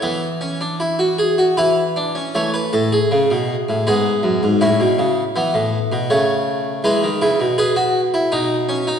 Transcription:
<<
  \new Staff \with { instrumentName = "Harpsichord" } { \time 3/4 \key a \major \tempo 4 = 80 << { e''2 b'4 | cis''16 b'16 a'16 gis'4~ gis'16 gis'4 | e'2 cis''4 | b'4 b'2 | } \\ { b8 cis'16 d'16 e'16 fis'16 gis'16 fis'16 e'8 d'16 cis'16 | a2 b4 | cis'4 b4 a4 | gis8 e'8 gis'16 fis'8 e'16 dis'8 cis'16 dis'16 | } >> }
  \new Staff \with { instrumentName = "Harpsichord" } { \clef bass \time 3/4 \key a \major e2 e4 | e8 a,8 cis16 b,8 a,16 gis,8 fis,16 gis,16 | a,16 b,16 cis8 e16 a,8 b,16 cis4 | e16 dis16 cis16 b,4~ b,16 b,4 | }
>>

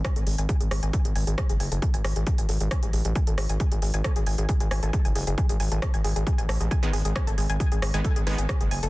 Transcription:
<<
  \new Staff \with { instrumentName = "Synth arpeggio sound" } { \time 4/4 \key gis \phrygian \tempo 4 = 135 gis''16 a'16 gis'16 gis''16 gis'16 gis'16 gis'16 gis''16 a'16 gis'16 gis''16 gis'16 gis'16 gis'16 gis''16 a'16 | gis'16 gis''16 gis'16 gis'16 gis'16 gis''16 a'16 gis'16 gis''16 gis'16 gis'16 gis'16 gis''16 a'16 gis'16 gis''16 | gis'16 gis'16 gis'16 gis''16 a'16 gis'16 gis''16 gis'16 gis'16 gis'16 gis''16 a'16 gis'16 gis''16 gis'16 gis'16 | gis'16 gis'16 gis''16 a'16 gis'16 gis''16 gis'16 gis'16 gis'16 gis''16 a'16 gis'16 gis''16 gis'16 gis'16 gis'16 |
gis''16 a'16 gis'16 gis''16 gis'16 gis'16 gis'16 gis''16 a'16 gis'16 gis''16 gis'16 gis'16 gis'16 gis''16 a'16 | }
  \new Staff \with { instrumentName = "Supersaw synth" } { \clef bass \time 4/4 \key gis \phrygian r1 | r1 | r1 | r2. r16 <dis gis b>16 r8 |
r4. r16 <dis gis b>16 r8 <dis gis b>16 r4 r16 | }
  \new Staff \with { instrumentName = "Analog synth bass" } { \clef bass \time 4/4 \key gis \phrygian r16 gis,,16 gis,,16 gis,,16 r16 gis,,16 gis,,16 gis,,16 r16 gis,,16 gis,,16 gis,,16 r16 fis,,16 fis,,16 fis,,16 | r16 gis,,16 gis,,16 gis,,16 r16 gis,,16 gis,,16 gis,,16 r16 a,,16 a,,16 a,,16 r16 gis,,16 gis,,16 gis,,16 | r16 gis,,16 gis,,16 gis,,16 r16 gis,,16 gis,,16 gis,,16 r16 gis,,16 gis,,16 gis,,16 r16 fis,,16 fis,,16 fis,,16 | r16 gis,,16 gis,,16 gis,,16 r16 gis,,16 gis,,16 gis,,16 r16 a,,16 a,,16 a,,16 r16 gis,,16 gis,,16 gis,,16 |
r16 gis,,16 gis,,16 gis,,16 r16 gis,,16 gis,,16 gis,,16 r16 gis,,16 gis,,16 gis,,16 r16 fis,,16 fis,,16 fis,,16 | }
  \new DrumStaff \with { instrumentName = "Drums" } \drummode { \time 4/4 <hh bd ss>16 hh16 hho16 hh16 <hh bd>16 hh16 <hho ss>16 hh16 <hh bd>16 hh16 hho16 hh16 <hh bd ss>16 hh16 hho16 hh16 | <hh bd>16 hh16 <hho ss>16 hh16 <hh bd>16 hh16 hho16 hh16 <hh bd ss>16 hh16 hho16 hh16 <hh bd>16 hh16 <hho ss>16 hh16 | <hh bd>16 hh16 hho16 hh16 <hh bd ss>16 hh16 hho16 hh16 <hh bd>16 hh16 <hho ss>16 hh16 <hh bd>16 hh16 hho16 hh16 | <hh bd>16 hh16 hho16 hh16 <hh bd ss>16 hh16 hho16 hh16 <hh bd>16 hh16 <hho ss>16 hh16 <hh bd>16 hh16 hho16 hh16 |
<hh bd ss>16 hh16 hho16 hh16 <hh bd>16 hh16 <hho ss>16 hh16 <hh bd>16 hh16 hho16 hh16 <hh bd ss>16 hh16 hho16 hh16 | }
>>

